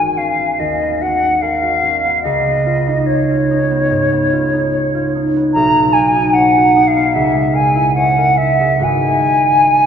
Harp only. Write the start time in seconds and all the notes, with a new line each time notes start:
Already playing: G#1 B3 C#4 F#4 A#4
0.17 C#4
0.40 B3
0.60 D#2
0.82 B3
1.02 F#4
1.23 C#4
1.42 A#4
1.63 F#4
1.83 C#4
2.04 B3
2.25 C#2
2.46 B3
2.66 F4
2.87 D#4
3.10 C#5
3.31 F4
3.51 D#4
3.71 B3
3.91 G#2
4.12 B3
4.32 F4
4.53 D#4
4.73 C#5
4.95 F4
5.15 D#4
5.36 B3
5.56 B1
5.76 B3
5.97 F#4
6.16 D#4
6.36 C#5
6.57 F#4
6.76 D#4
6.95 B3
7.15 C#2
7.34 G#3
7.53 A#4
7.75 E4
7.96 C#5
8.18 A#4
8.39 E4
8.60 G#3
8.79 G#1 G#3 F#4 G#4 B4